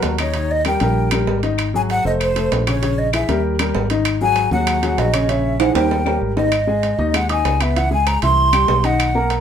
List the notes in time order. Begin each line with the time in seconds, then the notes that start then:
Already playing: F#3 F#4 A#4
0.03 D#2, high timbale, low timbale
0.18 D#3 D#4 C#5 D#5, high timbale, claves
0.34 D#3 D#4 D#5, high timbale
0.51 D#5
0.65 G3 G4 A#4 G5, high timbale, low timbale, claves
0.80 A#1 G3 G4 A#4, high timbale
1.11 G3 G4 A#4, high timbale, claves
1.27 G#1, low timbale
1.43 D#3 D#4 D#5, high timbale
1.58 high timbale, claves
1.74 F#3 F#4 G#4 G#5
1.90 F#5, high timbale, low timbale
2.05 F1 A3 A4 C5 D#5
2.20 C5, high timbale, claves
2.36 A3 A4 C5, high timbale
2.52 A#1, high timbale, low timbale
2.67 C#3 C#4 C#5, high timbale, claves
2.82 C#3 C#4 C#5, high timbale
2.98 D#5
3.13 E3 E4 G#4 E5, high timbale, low timbale, claves
3.29 D#2 G3 G4 A#4, high timbale
3.59 G3 G4 A#4, high timbale, claves
3.75 G#1, low timbale
3.90 D#3 D#4 D#5, high timbale
4.05 high timbale, claves
4.21 F#3 F#4 G#4 G#5
4.36 high timbale, low timbale
4.51 D#2 F#3 F#4 G#4 F#5
4.67 high timbale, claves
4.82 F#3 F#4 G#4, high timbale
4.98 A#1 D#5, high timbale, low timbale
5.13 C#3 C#4 C#5, high timbale, claves
5.28 C#3 C#4 C#5 E5, high timbale
5.59 E3 E4 G#4 F#5, high timbale, claves
5.75 D#2 G3 G4 A#4 G5, high timbale
5.91 low timbale
6.05 G3 G4 A#4, low timbale, claves
6.21 G#1
6.36 D#3 D#4 D#5, low timbale
6.52 high timbale, claves
6.67 G#3 G#4 G#5
6.83 high timbale, low timbale
6.98 D#2 D#3 D#4 D#5
7.14 G#3 G#4 F#5 G#5, high timbale, claves
7.29 D#4 D#5 G#5 D#6, high timbale
7.45 C#2, high timbale, low timbale
7.60 B3 B4 E5 B5, high timbale, claves
7.76 E3 E4 E5 F#5, high timbale
7.91 G#3 G#4 G#5
8.07 A#5, high timbale, low timbale, claves
8.22 C2 E3 E4 E5 C6, high timbale
8.53 G3 G4 G5, high timbale, claves
8.68 B1, low timbale
8.84 D#3 D#4 D#5 F#5, high timbale
9.00 high timbale, claves
9.15 A#3 A#4 A#5
9.30 high timbale, low timbale